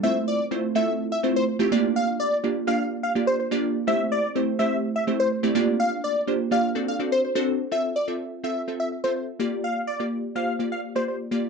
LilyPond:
<<
  \new Staff \with { instrumentName = "Digital synth lead" } { \time 4/4 \key g \dorian \tempo 4 = 125 e''8 d''8 r8 e''8 r16 e''16 r16 c''16 r4 | f''8 d''8 r8 f''8 r16 f''16 r16 c''16 r4 | e''8 d''8 r8 e''8 r16 e''16 r16 c''16 r4 | f''8 d''8 r8 f''8 r16 f''16 r16 c''16 r4 |
e''8 d''8 r8 e''8 r16 e''16 r16 c''16 r4 | f''8 d''8 r8 f''8 r16 f''16 r16 c''16 r4 | }
  \new Staff \with { instrumentName = "Synth pluck" } { \time 4/4 \key g \dorian <a c' e' f' c''>8. r16 <a c' e' f' c''>16 r16 <a c' e' f' a'>8. r16 <a c' e' f' c''>8 r16 <a c' e' f' g'>16 <bes d' f' g' d''>8~ | <bes d' f' g' d''>8. r16 <bes d' f' g' d''>16 r16 <bes d' f' g' d''>8. r16 <bes d' f' g' d''>8 r16 <bes d' f' g' d''>8 r16 | <a c' e' g' c''>8. r16 <a c' e' g' c''>16 r16 <a c' e' g' c''>8. r16 <a c' e' g' c''>8 r16 <a c' e' g' d''>16 <bes d' f' g' d''>8~ | <bes d' f' g' d''>8. r16 <bes d' f' g' c''>16 r16 <bes d' f' g' d''>8 <c' d' fis' a' d''>8 <c' d' fis' a' d''>8 r16 <c' d' fis' a' c''>8 r16 |
<c' f' a' e''>8 r16 <c' f' a' e''>8 r16 <c' f' a' e''>16 r16 <c' f' a' e''>8 r16 <c' f' a' e''>8 r16 <bes f' g' d''>8~ | <bes f' g' d''>8 r16 <bes f' g' d''>8 r16 <bes f' g' c''>16 r16 <bes f' g' d''>8 r16 <bes f' g' d''>8 r16 <bes f' g' d''>16 r16 | }
>>